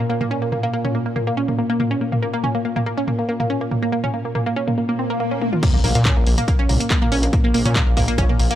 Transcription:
Already playing: A#2
0.10 A#3
0.21 A#3, mid tom
0.31 C#4
0.42 A#3
0.52 A#3, mid tom
0.63 A#3
0.73 A#3
0.85 C#4, mid tom
0.95 A#3
1.06 A#3
1.16 A#3, mid tom
1.27 A#3
1.37 C#4
1.48 A#3, mid tom
1.59 A#3
1.70 A#3
1.80 A#3, mid tom
1.91 C#4
2.01 A#3
2.12 A#3, mid tom
2.22 A#3
2.34 A#3
2.44 C#4, mid tom
2.55 A#3
2.65 A#3
2.76 A#3, mid tom
2.86 A#3
2.98 C#4
3.07 A#3, mid tom
3.19 A#3
3.29 A#3
3.40 A#3, mid tom
3.50 C#4
3.61 A#3
3.71 A#3, mid tom
3.82 A#3
3.92 A#3
4.04 C#4, mid tom
4.14 A#3
4.25 A#3
4.35 A#3, mid tom
4.46 A#3
4.56 C#4
4.68 A#3, mid tom
4.78 A#3, swell
4.89 A#3
4.99 C4
5.10 A#3
5.20 A#3
5.31 C#4
5.41 A#3, high tom
5.53 F4, mid tom
5.63 A#2 A#3, kick, closed hi-hat, crash, impact
5.74 A#3, mid tom
5.84 A#1 A#3, open hi-hat
5.95 A#2 A#3, closed hi-hat
6.05 C#4, kick, clap, closed hi-hat, mid tom
6.17 A#1 A#3
6.27 A#1 A#3, open hi-hat
6.38 A#3, closed hi-hat, mid tom
6.48 A#3, kick, closed hi-hat
6.59 C#4
6.69 C2 A#3, mid tom, open hi-hat
6.80 A#3, closed hi-hat
6.90 A#3, kick, clap, closed hi-hat
7.02 A#3, mid tom
7.12 A#1 C#4, open hi-hat
7.23 A#3, closed hi-hat
7.33 A#3, kick, closed hi-hat, mid tom
7.44 A#3
7.54 A#1 A#3, open hi-hat
7.65 A#2 C#4, closed hi-hat, mid tom
7.76 A#3, kick, clap, closed hi-hat
7.87 A#1 A#3
7.97 A#1 A#3, kick, mid tom, open hi-hat
8.08 A#3, closed hi-hat
8.18 A#1 C#4, kick, closed hi-hat
8.29 A#3, mid tom
8.39 A#1 A#3, open hi-hat
8.51 A#3, closed hi-hat

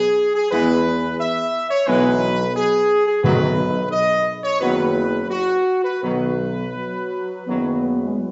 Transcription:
Already playing: G#4
0.35 G#4
0.51 E2 E3 G#3 B3 E4 B4
1.20 E5
1.71 C#5
1.87 B1 E3 G#3 B3 E4 B4
2.56 G#4
3.07 G#4
3.23 B1 B2 D#3 F#3 B3 F#4 B4
3.91 D#5
4.44 C#5
4.60 F#1 D#3 F#3 B3 F#4 B4
5.30 F#4
5.85 B4
6.02 B1 D#3 F#3 B3 F#4 B4
6.74 F#3
7.46 F#1 D#3 F#3 B3
8.01 G#3
8.19 F#3

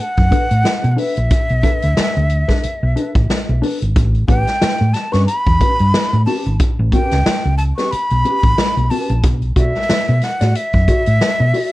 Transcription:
0.00 F#5
0.17 F#2, kick, closed hi-hat
0.31 D4 A4 B4, kick, closed hi-hat
0.49 A2, muted clean electric guitar stroke, closed hi-hat
0.64 muted clean electric guitar stroke, snare, closed hi-hat
0.82 B2, muted clean electric guitar stroke, closed hi-hat
0.92 F#5
0.97 D4 A4 B4 E5, open hi-hat
1.16 A#1, muted clean electric guitar stroke, closed hi-hat
1.31 kick, closed hi-hat
1.49 B1, closed hi-hat
1.63 D4 A4 B4, kick, closed hi-hat
1.82 D2, closed hi-hat
1.97 muted clean electric guitar stroke, muted fingered electric bass stroke, snare, closed hi-hat
2.16 D2, muted clean electric guitar stroke, closed hi-hat
2.30 closed hi-hat
2.48 D4 A4 B4, kick, snare, closed hi-hat
2.63 muted clean electric guitar stroke, muted fingered electric bass stroke, closed hi-hat
2.83 B1
2.96 D4 A4 B4, closed hi-hat
3.15 A1, muted clean electric guitar stroke, kick, closed hi-hat
3.29 muted clean electric guitar stroke, muted fingered electric bass stroke, snare, closed hi-hat
3.48 B1, muted clean electric guitar stroke
3.62 D4 A4 B4, open hi-hat
3.80 G#1, muted clean electric guitar stroke, closed hi-hat
3.96 A1, kick, closed hi-hat
4.15 closed hi-hat
4.28 A1 C#4 G4 B4 G5, kick, closed hi-hat
4.47 snare, closed hi-hat
4.61 muted clean electric guitar stroke, muted fingered electric bass stroke, snare, closed hi-hat
4.79 A2, muted clean electric guitar stroke
4.94 A5, snare, closed hi-hat
5.12 G2 C#4 G4 B4 C#6, snare, closed hi-hat
5.26 B5, muted clean electric guitar stroke, closed hi-hat
5.46 E2, kick, closed hi-hat
5.60 C#4 G4 B4, kick, closed hi-hat
5.79 G2, muted clean electric guitar stroke, closed hi-hat
5.93 muted clean electric guitar stroke, snare, closed hi-hat
6.12 A2, muted clean electric guitar stroke, closed hi-hat
6.26 C#4 G4 B4 A5, open hi-hat
6.45 G#1, muted clean electric guitar stroke, closed hi-hat
6.60 kick, closed hi-hat
6.79 A1
6.92 C#4 G4 B4 G5, kick, closed hi-hat
7.11 C#2, snare, closed hi-hat
7.26 muted clean electric guitar stroke, muted fingered electric bass stroke, snare, closed hi-hat
7.44 C#2, muted clean electric guitar stroke
7.58 A5, closed hi-hat
7.77 C#4 G4 B4 C#6, snare, closed hi-hat
7.91 B5, muted fingered electric bass stroke, closed hi-hat
8.10 B1, closed hi-hat
8.25 C#4 G4 B4, closed hi-hat
8.43 A1, kick, closed hi-hat
8.58 muted clean electric guitar stroke, muted fingered electric bass stroke, snare, closed hi-hat
8.76 B1, muted clean electric guitar stroke, closed hi-hat
8.90 C#4 G4 B4 A5, open hi-hat
9.09 A#1, muted clean electric guitar stroke, closed hi-hat
9.23 B1, kick, closed hi-hat
9.42 closed hi-hat
9.56 B1 F#4 A4 D5 E5, kick, closed hi-hat
9.75 snare, closed hi-hat
9.89 muted clean electric guitar stroke, muted fingered electric bass stroke, snare, closed hi-hat
10.08 B2, muted clean electric guitar stroke, closed hi-hat
10.21 F#5, snare, closed hi-hat
10.41 A2 F#4 A4 D5, snare, closed hi-hat
10.55 E5, muted clean electric guitar stroke, closed hi-hat
10.73 F#2, kick, closed hi-hat
10.88 F#4 A4 D5, kick, closed hi-hat
11.06 A2, muted clean electric guitar stroke, closed hi-hat
11.21 muted clean electric guitar stroke, snare, closed hi-hat
11.40 B2, muted clean electric guitar stroke
11.54 F#4 A4 D5, open hi-hat

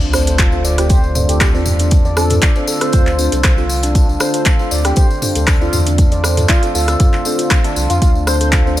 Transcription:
Already playing: D2 D3 A3 C4 F4, sub drop
0.01 D4, tambourine
0.13 C4 D4 F4 A4 C5, cross-stick, tambourine
0.27 A4 C5, closed hi-hat, tambourine
0.39 F4, kick, clap, closed hi-hat, tambourine
0.52 C4 D4 F4 A4 C5, tambourine
0.65 D5, tambourine
0.78 C4 D4 F4 G4 A4 C5, cross-stick, closed hi-hat, tambourine
0.89 G4 C5, kick, closed hi-hat, tambourine
1.04 tambourine
1.15 C4 D4 F4 A4 C5, mid tom, tambourine
1.29 G4 A4, closed hi-hat, tambourine
1.40 G4, kick, cross-stick, clap, closed hi-hat, tambourine
1.54 E2 C4 D4 F4 A4 C5 D5, tambourine
1.66 mid tom, tambourine
1.79 D4, closed hi-hat, tambourine
1.91 kick, closed hi-hat, tambourine
2.05 D5, tambourine
2.17 C4 D4 F4 A4 C5, cross-stick, tambourine
2.30 A4, closed hi-hat, mid tom, tambourine
2.42 D5, kick, clap, closed hi-hat, tambourine
2.56 C4 D4 F4 A4 C5, tambourine
2.67 A4, tambourine
2.81 C4 D4 F4 A4 C5, cross-stick, closed hi-hat, tambourine
2.93 D2 F4, kick, closed hi-hat, mid tom, tambourine
3.07 clap, tambourine
3.19 C4 D4 F4 A4 C5, tambourine
3.32 C2 A4, closed hi-hat, tambourine
3.44 kick, cross-stick, clap, closed hi-hat, tambourine
3.58 C4 D4 F4 A4 C5, tambourine
3.69 tambourine
3.83 D4, closed hi-hat, tambourine
3.95 kick, closed hi-hat, tambourine
4.09 D4, tambourine
4.20 C4 D4 F4 A4 C5, cross-stick, tambourine
4.34 A4 C5, closed hi-hat, tambourine
4.46 F4, kick, clap, closed hi-hat, tambourine
4.59 C4 D4 F4 A4 C5, tambourine
4.71 D2 D5, tambourine
4.85 C4 D4 F4 G4 A4 C5, cross-stick, closed hi-hat, tambourine
4.96 G4 C5, kick, closed hi-hat, tambourine
5.10 tambourine
5.22 C4 D4 F4 A4 C5, mid tom, tambourine
5.35 D2 A4, closed hi-hat, tambourine
5.47 kick, cross-stick, clap, closed hi-hat, tambourine
5.61 C4 D4 F4 A4 C5 D5, tambourine
5.73 E2, mid tom, tambourine
5.87 D4, closed hi-hat, tambourine
5.98 kick, closed hi-hat, tambourine
6.11 D5, closed hi-hat, tambourine
6.23 C4 D4 F4 A4 C5, cross-stick, tambourine
6.37 A4, closed hi-hat, mid tom, tambourine
6.49 F4, kick, clap, closed hi-hat, tambourine
6.63 C4 D4 F4 A4 C5, closed hi-hat, tambourine
6.75 D2 F4 A4, tambourine
6.88 C4 D4 F4 A4 C5, cross-stick, closed hi-hat, tambourine
7.00 F4, kick, closed hi-hat, mid tom, tambourine
7.13 clap, tambourine
7.25 C4 D4 F4 A4 C5, tambourine
7.39 F4, closed hi-hat, tambourine
7.50 kick, cross-stick, clap, closed hi-hat, tambourine
7.64 C4 D4 F4 A4 E5, closed hi-hat, tambourine
7.76 C2 F4, tambourine
7.90 F2 D4 F4, closed hi-hat, tambourine
8.01 D2 D4 F4, kick, closed hi-hat, tambourine
8.15 D4, tambourine
8.27 C4 D4 F4 A4 C5, cross-stick, tambourine
8.40 A4 C5, closed hi-hat, tambourine
8.52 F4, kick, clap, closed hi-hat, tambourine
8.66 C4 D4 F4 A4 C5, tambourine

